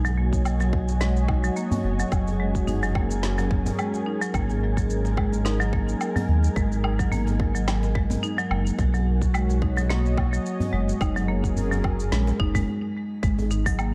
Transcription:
Already playing: B1 D#4 A#4 G#5
0.05 F#3, djembe tone, shaker
0.12 F#4 C#5
0.18 A#3
0.25 D#5
0.33 kick, shaker
0.45 low woodblock, shaker
0.60 F#3, djembe slap, shaker
0.73 kick
0.88 djembe slap, djembe tone, shaker
1.01 G#3, snare, shaker
1.16 shaker
1.28 D#4, kick, low woodblock
1.44 F#3, shaker
1.56 A#3, shaker
1.71 djembe bass, shaker
1.84 F#1, djembe slap
1.99 F#3, djembe tone, shaker
2.12 F#1 F#3, kick, low woodblock, shaker
2.27 G#4, djembe tone, shaker
2.39 G#3 C#4
2.55 kick, shaker
2.67 D#4, djembe bass, shaker
2.82 F#3, djembe slap, djembe tone, shaker
2.95 A#3 A#4, kick, low woodblock
3.10 djembe slap, shaker
3.23 snare, shaker
3.38 F#3, djembe slap, shaker
3.51 F#1, kick
3.66 djembe slap, djembe bass, shaker
3.79 G#3, low woodblock, shaker
3.94 djembe slap, shaker
4.06 D#4
4.21 F#3, shaker
4.34 G#1 G#3 A#3, kick, low woodblock, shaker
4.49 djembe tone, shaker
4.58 D#4
4.77 F#3, kick, shaker
4.90 shaker
5.05 djembe slap, shaker
5.17 G#3, kick, low woodblock
5.32 djembe slap, djembe tone, shaker
5.45 D#4, snare, shaker
5.60 F#3, shaker
5.73 A#3, kick
5.89 shaker
6.01 low woodblock, shaker
6.16 F#3, djembe bass, shaker
6.29 D#2, djembe slap
6.43 djembe tone, shaker
6.56 G#1 G#3, kick, shaker
6.72 djembe tone, shaker
6.84 D#4, low woodblock
6.99 F#3, kick, shaker
7.12 A#3, djembe bass, shaker
7.27 djembe slap, djembe tone, shaker
7.40 kick
7.55 F#3, djembe slap, shaker
7.68 snare, low woodblock, shaker
7.83 djembe slap, shaker
7.95 G#3, kick
8.10 djembe slap, djembe bass, shaker
8.23 D#4, shaker
8.38 F#3, djembe slap, shaker
8.51 F#1 A#3, low woodblock
8.67 shaker
8.79 B1, kick, shaker
8.94 F#3 F#4, djembe tone, shaker
9.22 kick, shaker
9.34 G#3 C#5, low woodblock, shaker
9.49 djembe slap, shaker
9.62 D#4 D#5, kick
9.77 F#3, djembe slap, djembe tone, shaker
9.90 A#3, snare, shaker
10.06 shaker
10.17 kick, low woodblock
10.33 F#3, shaker
10.46 shaker
10.60 djembe bass, shaker
10.73 F#1 G#3, djembe slap
10.88 djembe tone, shaker
11.01 F#1 F#3 D#4, kick, low woodblock, shaker
11.16 F#3 G#4, djembe tone, shaker
11.20 A#4
11.28 A#3 C#4
11.44 kick, shaker
11.57 djembe bass, shaker
11.72 F#3, djembe slap, djembe tone, shaker
11.84 kick, low woodblock
12.00 djembe slap, djembe tone, shaker
12.12 A#1 G#3, snare, shaker
12.27 djembe slap, shaker
12.40 F#1 D#4, kick
12.55 G#3, kick, djembe slap, djembe bass, shaker
13.23 G#1 G#3, kick, shaker
13.38 D#4, djembe tone, shaker
13.51 D#4, shaker
13.66 F#3, kick, open hi-hat, shaker
13.79 A#3 B5, low woodblock, shaker

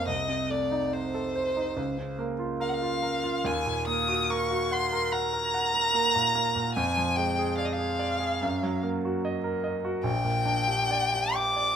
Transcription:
0.07 C2 D#5
0.28 C3
0.50 A3 D5
0.71 D#4
0.93 C5
1.14 A4
1.35 C5
1.57 D#4
1.77 C#2
1.98 C#3
2.19 A#3
2.39 F4
2.60 A#4 F5
2.69 F#5
2.74 F5
2.82 F4
3.02 A#4
3.24 F4
3.44 D#2 G#5
3.66 A#2
3.87 A#3 D#6
4.08 F#4
4.30 A#4 C#6
4.51 F#4
4.71 F#5 C6
4.92 A#4
5.12 F#5 A#5
5.33 A#4
5.54 F#5
5.74 A#4
5.94 A#3
6.15 A#2
6.35 A#3
6.56 A#2
6.75 F2 G#5
6.97 F3
7.16 G#3 G5
7.39 G#4
7.58 D5 F5
7.66 D#5
7.73 F5
7.78 G#4
7.99 D5
8.20 G#4
8.42 F#2
8.63 F#3
8.83 A#3
9.05 F#4
9.25 D#5
9.44 A#4
9.64 D#5
9.85 F#4
10.04 A#1 G5
10.24 A#2
10.46 D4
10.68 G4
10.91 D5
11.14 G4
11.35 G5 D6
11.56 D5

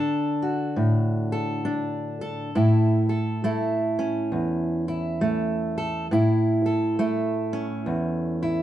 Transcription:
Already playing: D3 D4 A4
0.42 F#4
0.76 A2
1.32 A4
1.65 D4
2.21 A4
2.55 A2 E4
3.09 A4
3.44 A3 E4
3.99 C#4
4.32 E2
4.88 E4
5.21 A3
5.78 A4
6.11 A2 E4
6.66 A4
6.99 A3 E4
7.53 C#4
7.86 E2
8.43 E4

